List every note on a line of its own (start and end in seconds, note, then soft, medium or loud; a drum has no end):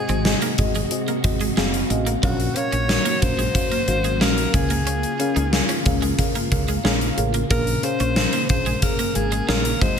0.00 0.21 G#2 medium
0.00 2.20 C3 medium
0.00 2.20 G#3 medium
0.00 0.25 C4 medium
0.00 0.25 F#4 medium
0.00 2.20 F#4 medium
0.00 0.26 G#4 medium
0.00 0.55 G#4 medium
0.00 0.26 D#5 medium
0.09 0.34 G#1 medium
0.09 0.20 C4 medium
0.09 closed hi-hat soft
0.25 0.48 C4 medium
0.25 0.49 F#4 medium
0.25 0.49 G#4 medium
0.25 0.49 D#5 medium
0.25 snare loud
0.42 0.53 A#3 medium
0.42 closed hi-hat soft
0.58 0.83 G#1 medium
0.58 0.81 C4 medium
0.58 0.82 F#4 medium
0.58 0.82 G#4 medium
0.58 0.82 D#5 medium
0.58 muted clean electric guitar stroke soft
0.58 kick medium
0.58 closed hi-hat medium
0.75 0.86 G#3 medium
0.75 closed hi-hat soft
0.91 1.14 C4 medium
0.91 1.15 F#4 medium
0.91 1.15 G#4 medium
0.91 1.15 D#5 medium
0.91 closed hi-hat medium
1.08 1.18 A#3 medium
1.08 closed hi-hat soft
1.24 1.49 G#1 medium
1.24 1.47 C4 medium
1.24 1.47 F#4 medium
1.24 1.48 G#4 medium
1.24 1.48 D#5 medium
1.24 muted clean electric guitar stroke soft
1.24 kick medium
1.24 closed hi-hat medium
1.40 1.51 G#3 medium
1.40 closed hi-hat soft
1.57 1.82 F#1 medium
1.57 1.68 G#3 medium
1.57 1.80 C4 loud
1.57 1.80 F#4 loud
1.57 1.81 G#4 loud
1.57 1.81 F5 loud
1.57 snare loud
1.74 closed hi-hat medium
1.90 2.15 A1 medium
1.90 2.13 C4 medium
1.90 2.14 F#4 medium
1.90 2.14 G#4 medium
1.90 2.14 D#5 medium
1.90 muted clean electric guitar stroke soft
1.90 closed hi-hat medium
2.07 2.17 A#3 medium
2.07 closed hi-hat medium
2.23 2.48 A#1 loud
2.23 3.18 A#2 medium
2.23 4.52 F#3 medium
2.23 2.34 F#3 medium
2.23 7.47 A#3 medium
2.23 2.46 C#4 medium
2.23 4.52 F#4 medium
2.23 2.46 F#4 medium
2.23 2.58 F#4 medium
2.23 2.47 A#4 medium
2.23 2.47 F5 medium
2.23 kick loud
2.23 closed hi-hat medium
2.40 closed hi-hat medium
2.56 2.79 C#4 medium
2.56 2.79 F#4 medium
2.56 2.80 A#4 medium
2.56 3.24 C#5 loud
2.56 2.80 F5 loud
2.56 muted clean electric guitar stroke soft
2.56 closed hi-hat medium
2.72 2.97 A#1 medium
2.72 2.83 C#4 medium
2.72 closed hi-hat soft
2.89 3.12 C#4 medium
2.89 3.12 F#4 medium
2.89 3.13 A#4 medium
2.89 3.13 F5 medium
2.89 snare medium
3.05 3.16 A#3 medium
3.05 closed hi-hat soft
3.22 3.47 A#1 medium
3.22 3.45 C#4 medium
3.22 3.45 F#4 medium
3.22 3.46 A#4 medium
3.22 4.23 C5 loud
3.22 3.46 F5 medium
3.22 muted clean electric guitar stroke soft
3.22 kick medium
3.22 closed hi-hat medium
3.39 3.49 G#3 medium
3.39 closed hi-hat soft
3.54 3.78 C#4 medium
3.54 3.78 F#4 medium
3.54 3.78 A#4 medium
3.54 3.79 F5 medium
3.54 kick medium
3.54 closed hi-hat medium
3.72 3.82 A#3 medium
3.72 closed hi-hat soft
3.88 4.21 G#1 medium
3.88 4.11 C#4 medium
3.88 4.11 F#4 medium
3.88 4.11 A#4 medium
3.88 4.12 F5 medium
3.88 muted clean electric guitar stroke soft
3.88 closed hi-hat medium
4.04 4.15 G#3 medium
4.04 closed hi-hat soft
4.20 4.46 A#1 medium
4.20 4.32 G#3 medium
4.20 4.44 C#4 medium
4.20 4.44 F#4 medium
4.20 4.44 A#4 medium
4.20 4.56 A#4 medium
4.20 4.45 F5 loud
4.20 snare loud
4.38 closed hi-hat soft
4.54 5.03 C#2 medium
4.54 9.77 C#3 medium
4.54 5.49 C#3 medium
4.54 5.07 C#4 medium
4.54 7.48 F4 medium
4.54 5.07 G#4 medium
4.54 5.86 G#4 medium
4.54 5.07 A#4 medium
4.54 5.07 F5 medium
4.54 muted clean electric guitar stroke soft
4.54 kick loud
4.54 closed hi-hat medium
4.70 4.81 A#3 medium
4.70 closed hi-hat medium
4.87 4.97 C#4 medium
4.87 closed hi-hat medium
5.03 closed hi-hat soft
5.19 5.43 C#4 medium
5.19 5.43 G#4 medium
5.19 5.43 A#4 medium
5.19 5.44 F5 medium
5.19 muted clean electric guitar stroke soft
5.19 closed hi-hat medium
5.36 5.61 C#2 medium
5.36 5.47 D#4 medium
5.36 closed hi-hat soft
5.52 5.76 C#4 medium
5.52 5.76 G#4 medium
5.52 5.76 A#4 medium
5.52 5.76 F5 medium
5.52 snare medium
5.69 5.80 C#4 medium
5.69 closed hi-hat soft
5.85 6.11 C#2 medium
5.85 6.09 C#4 medium
5.85 6.09 G#4 medium
5.85 6.09 A#4 medium
5.85 6.09 F5 medium
5.85 muted clean electric guitar stroke soft
5.85 kick medium
5.85 closed hi-hat medium
6.02 6.13 G#3 medium
6.02 closed hi-hat soft
6.18 6.42 C#4 medium
6.18 6.42 G#4 medium
6.18 6.42 A#4 medium
6.18 6.42 F5 medium
6.18 kick medium
6.18 closed hi-hat medium
6.35 6.46 A#3 medium
6.35 closed hi-hat soft
6.51 6.76 C#2 medium
6.51 6.75 C#4 medium
6.51 6.75 G#4 medium
6.51 6.75 A#4 medium
6.51 6.75 F5 medium
6.51 muted clean electric guitar stroke soft
6.51 kick medium
6.51 closed hi-hat medium
6.68 6.79 G#3 medium
6.68 closed hi-hat soft
6.84 7.09 A#1 medium
6.84 6.95 G#3 medium
6.84 7.08 C#4 loud
6.84 7.08 G#4 medium
6.84 7.08 A#4 medium
6.84 7.08 F5 loud
6.84 snare loud
7.01 closed hi-hat soft
7.17 7.42 A1 medium
7.17 7.41 C#4 medium
7.17 7.41 G#4 medium
7.17 7.41 A#4 medium
7.17 7.41 F5 medium
7.17 muted clean electric guitar stroke soft
7.17 closed hi-hat medium
7.34 7.45 A#3 medium
7.34 closed hi-hat medium
7.50 7.75 A#1 loud
7.50 8.45 A#2 medium
7.50 9.79 A#3 medium
7.50 7.61 A#3 medium
7.50 7.73 C#4 medium
7.50 7.74 G#4 medium
7.50 9.79 G#4 medium
7.50 7.74 A#4 medium
7.50 7.85 A#4 medium
7.50 7.74 F5 loud
7.50 kick loud
7.50 closed hi-hat medium
7.67 closed hi-hat medium
7.83 8.06 C#4 medium
7.83 8.07 G#4 medium
7.83 8.07 A#4 medium
7.83 8.49 C5 loud
7.83 8.07 F5 medium
7.83 muted clean electric guitar stroke soft
7.83 closed hi-hat medium
8.00 8.25 A#1 medium
8.00 8.11 C#4 medium
8.00 closed hi-hat soft
8.16 8.39 C#4 medium
8.16 8.40 G#4 medium
8.16 8.40 A#4 medium
8.16 8.40 F5 medium
8.16 snare medium
8.33 8.44 A#3 medium
8.33 closed hi-hat medium
8.49 8.74 A#1 medium
8.49 8.73 C#4 medium
8.49 8.73 G#4 medium
8.49 8.73 A#4 medium
8.49 8.84 C5 medium
8.49 8.73 F5 medium
8.49 muted clean electric guitar stroke soft
8.49 kick medium
8.49 closed hi-hat medium
8.66 8.77 G#3 medium
8.66 closed hi-hat soft
8.82 9.05 C#4 medium
8.82 9.06 G#4 medium
8.82 9.17 A#4 loud
8.82 9.06 A#4 medium
8.82 9.06 F5 medium
8.82 kick medium
8.82 closed hi-hat medium
8.99 9.10 A#3 medium
8.99 closed hi-hat soft
9.15 9.40 G#1 medium
9.15 9.38 C#4 medium
9.15 9.38 G#4 medium
9.15 9.50 G#4 medium
9.15 9.39 A#4 medium
9.15 9.39 F5 medium
9.15 muted clean electric guitar stroke soft
9.15 closed hi-hat medium
9.32 9.43 G#3 medium
9.32 closed hi-hat soft
9.48 9.73 A#1 medium
9.48 9.59 G#3 medium
9.48 9.72 C#4 medium
9.48 9.72 G#4 medium
9.48 9.83 A#4 medium
9.48 9.72 A#4 medium
9.48 9.72 F5 loud
9.48 snare loud
9.65 closed hi-hat medium
9.81 9.99 G#1 medium
9.81 9.99 G#2 medium
9.81 9.99 C3 medium
9.81 9.99 F#3 medium
9.81 9.99 G#3 medium
9.81 9.99 C4 medium
9.81 9.99 F#4 medium
9.81 9.99 G#4 medium
9.81 9.99 C5 medium
9.81 9.99 D#5 medium
9.81 muted clean electric guitar stroke soft
9.81 kick loud
9.81 closed hi-hat medium